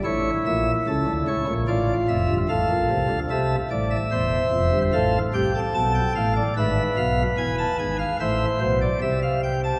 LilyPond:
<<
  \new Staff \with { instrumentName = "Pipe organ" } { \time 4/4 \key a \phrygian \tempo 4 = 74 << { cis''8 e''8 a'8 cis''8 d''8 e''8 f''4 | e''8 d''16 e''4~ e''16 f''8 g''8 a''16 g''16 f''16 d''16 | e''8 f''8 gis''16 a''16 gis''16 f''16 e''8 c''16 d''16 e''16 f''16 g''16 a''16 | } \\ { e'2 f'4 a'4 | a'8 r8 c''4 a'8 g'16 a'4~ a'16 | b'2 c''2 | } >> }
  \new Staff \with { instrumentName = "Pipe organ" } { \clef bass \time 4/4 \key a \phrygian <a,, a,>8 <bes,, bes,>8 <cis, cis>16 <d, d>16 <cis, cis>16 <bes,, bes,>16 <a,, a,>8 <f,, f,>16 <g,, g,>16 <a,, a,>16 <bes,, bes,>16 <c, c>16 <d, d>16 | <c, c>8 <a,, a,>8 <e,, e,>8 <f,, f,>16 <g,, g,>16 <a,, a,>8 <c, c>8 <b,, b,>8 <a,, a,>8 | <gis,, gis,>8 <b,, b,>8 <e,, e,>8 <gis,, gis,>8 <a,, a,>8 <b,, b,>8 <c, c>4 | }
>>